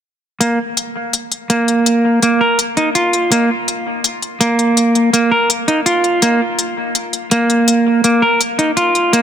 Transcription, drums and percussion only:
0.41 closed hi-hat medium
0.77 closed hi-hat medium
1.13 closed hi-hat medium
1.32 closed hi-hat soft
1.50 closed hi-hat medium
1.68 closed hi-hat soft
1.86 closed hi-hat medium
2.22 closed hi-hat medium
2.59 closed hi-hat medium
2.77 closed hi-hat soft
2.95 closed hi-hat medium
3.13 closed hi-hat soft
3.32 closed hi-hat medium
3.68 closed hi-hat medium
4.04 closed hi-hat medium
4.22 closed hi-hat soft
4.41 closed hi-hat medium
4.59 closed hi-hat soft
4.77 closed hi-hat medium
4.95 closed hi-hat soft
5.14 closed hi-hat medium
5.50 closed hi-hat medium
5.68 closed hi-hat soft
5.86 closed hi-hat medium
6.04 closed hi-hat soft
6.22 closed hi-hat medium
6.59 closed hi-hat medium
6.95 closed hi-hat medium
7.13 closed hi-hat soft
7.31 closed hi-hat medium
7.50 closed hi-hat soft
7.68 closed hi-hat medium
8.04 closed hi-hat medium
8.41 closed hi-hat medium
8.59 closed hi-hat soft
8.77 closed hi-hat medium
8.95 closed hi-hat soft
9.13 closed hi-hat medium

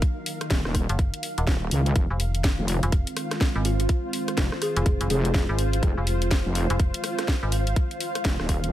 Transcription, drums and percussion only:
0.02 kick loud
0.02 closed hi-hat medium
0.26 open hi-hat loud
0.41 cross-stick medium
0.41 closed hi-hat soft
0.50 kick loud
0.50 snare loud
0.50 closed hi-hat medium
0.65 cross-stick medium
0.65 snare soft
0.75 kick medium
0.75 cross-stick medium
0.75 open hi-hat loud
0.89 closed hi-hat soft
0.99 kick loud
0.99 closed hi-hat medium
1.14 closed hi-hat medium
1.23 open hi-hat loud
1.38 closed hi-hat medium
1.47 kick loud
1.47 snare loud
1.71 open hi-hat loud
1.86 closed hi-hat soft
1.96 kick loud
1.96 closed hi-hat medium
2.20 open hi-hat loud
2.35 closed hi-hat soft
2.44 kick loud
2.44 snare loud
2.44 closed hi-hat medium
2.68 open hi-hat loud
2.83 closed hi-hat soft
2.92 kick loud
2.92 closed hi-hat medium
3.07 closed hi-hat medium
3.17 cross-stick medium
3.17 open hi-hat loud
3.31 cross-stick medium
3.31 snare soft
3.31 closed hi-hat medium
3.41 kick loud
3.41 snare loud
3.65 open hi-hat loud
3.80 closed hi-hat medium
3.89 kick loud
3.89 closed hi-hat medium
4.13 open hi-hat loud
4.28 cross-stick medium
4.28 closed hi-hat medium
4.37 kick loud
4.37 snare loud
4.37 closed hi-hat medium
4.52 cross-stick medium
4.52 snare soft
4.62 cross-stick medium
4.62 open hi-hat loud
4.77 closed hi-hat medium
4.86 kick loud
4.86 closed hi-hat medium
5.01 closed hi-hat medium
5.10 open hi-hat loud
5.25 closed hi-hat medium
5.34 kick loud
5.34 snare loud
5.59 open hi-hat loud
5.73 closed hi-hat medium
5.83 kick loud
5.83 closed hi-hat medium
6.07 open hi-hat loud
6.22 closed hi-hat medium
6.31 kick loud
6.31 snare loud
6.31 closed hi-hat medium
6.55 open hi-hat medium
6.70 closed hi-hat medium
6.80 kick loud
6.80 closed hi-hat medium
6.94 closed hi-hat medium
7.04 cross-stick medium
7.04 open hi-hat loud
7.19 cross-stick medium
7.19 snare soft
7.19 closed hi-hat medium
7.28 kick loud
7.28 snare loud
7.52 open hi-hat loud
7.67 closed hi-hat medium
7.76 kick loud
7.76 closed hi-hat medium
7.91 closed hi-hat soft
8.01 open hi-hat loud
8.15 cross-stick medium
8.15 closed hi-hat medium
8.25 kick loud
8.25 snare loud
8.25 closed hi-hat medium
8.40 cross-stick medium
8.40 snare soft
8.49 kick medium
8.49 cross-stick medium
8.49 open hi-hat loud
8.64 closed hi-hat medium

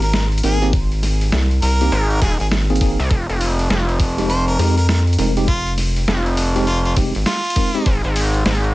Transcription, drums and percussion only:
0.02 open hi-hat soft
0.14 snare loud
0.14 open hi-hat soft
0.32 open hi-hat soft
0.38 closed hi-hat medium
0.43 open hi-hat medium
0.62 open hi-hat soft
0.73 kick loud
0.73 open hi-hat soft
0.92 open hi-hat soft
1.03 snare soft
1.03 open hi-hat medium
1.21 open hi-hat soft
1.32 snare loud
1.32 open hi-hat soft
1.51 open hi-hat soft
1.62 open hi-hat medium
1.81 open hi-hat soft
1.92 open hi-hat soft
2.10 open hi-hat soft
2.22 kick loud
2.22 snare soft
2.22 open hi-hat medium
2.40 open hi-hat soft
2.52 snare loud
2.52 open hi-hat soft
2.70 open hi-hat soft
2.76 closed hi-hat medium
2.81 kick loud
2.81 open hi-hat medium
3.00 open hi-hat soft
3.11 kick loud
3.11 open hi-hat soft
3.30 open hi-hat soft
3.41 open hi-hat medium
3.59 open hi-hat soft
3.70 snare loud
3.70 open hi-hat soft
3.89 open hi-hat soft
4.00 kick loud
4.00 open hi-hat medium
4.18 open hi-hat soft
4.30 open hi-hat soft
4.48 open hi-hat soft
4.59 open hi-hat medium
4.78 open hi-hat soft
4.89 snare loud
4.89 open hi-hat soft
5.07 open hi-hat soft
5.13 closed hi-hat medium
5.19 open hi-hat medium
5.37 open hi-hat soft
5.48 kick loud
5.48 open hi-hat soft
5.67 open hi-hat soft
5.78 snare soft
5.78 open hi-hat medium
5.96 open hi-hat soft
6.08 snare loud
6.08 open hi-hat soft
6.26 open hi-hat soft
6.37 open hi-hat medium
6.56 open hi-hat soft
6.67 open hi-hat soft
6.85 open hi-hat soft
6.96 kick loud
6.96 open hi-hat medium
7.15 open hi-hat soft
7.26 snare loud
7.26 open hi-hat soft
7.45 open hi-hat soft
7.50 closed hi-hat medium
7.56 kick loud
7.56 open hi-hat medium
7.75 open hi-hat soft
7.86 kick loud
7.86 open hi-hat soft
8.04 open hi-hat soft
8.16 open hi-hat medium
8.34 open hi-hat soft
8.46 snare loud
8.46 open hi-hat soft
8.64 open hi-hat soft

